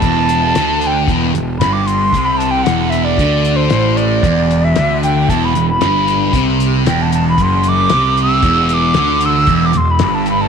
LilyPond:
<<
  \new Staff \with { instrumentName = "Flute" } { \time 4/4 \key e \minor \tempo 4 = 114 a''4. g''8 r4 b''16 d'''16 c'''8~ | c'''16 b''16 a''16 g''16 fis''8 e''16 d''4 c''8. d''8~ | d''8. e''8. g''8 a''16 b''8 b''4~ b''16~ | b''16 r8. g''16 a''16 a''16 b''16 c'''8 d'''4 e'''8~ |
e'''8 d'''4 e'''8. d'''16 c'''16 b''8 a''16 b''16 a''16 | }
  \new Staff \with { instrumentName = "Distorted electric guitar" } { \clef bass \time 4/4 \key e \minor e,4 d4 e,8 e,8 g,4 | c4 e,4 d4 a,4 | e,4 d4 e,8 e,8 g,4 | c4 e,4 fis,4 c4 |
e,4 d4 e,8 e,8 g,4 | }
  \new Staff \with { instrumentName = "Picked electric bass" } { \clef bass \time 4/4 \key e \minor e,,4 d,4 e,,8 e,,8 g,,4 | c,4 e,,4 d,4 a,,4 | e,,4 d,4 e,,8 e,,8 g,,4 | c,4 e,,4 fis,,4 c,4 |
e,,4 d,4 e,,8 e,,8 g,,4 | }
  \new DrumStaff \with { instrumentName = "Drums" } \drummode { \time 4/4 <cymc hh bd>8 hh8 <hh sn>8 hh8 <hh bd>8 hh8 <hh sn>8 hh8 | <hh bd>8 hh8 <hh sn>8 hh8 <hh bd>8 hh8 <hh sn>8 hh8 | <hh bd>8 hh8 <hh sn>8 hh8 <hh bd>8 hh8 <hh sn>8 hh8 | <hh bd>8 hh8 <hh sn>8 hh8 <hh bd>8 hh8 <hh sn>8 hh8 |
<hh bd>8 hh8 <hh sn>8 hh8 <hh bd>8 <hh sn>8 <hh sn>8 hh8 | }
>>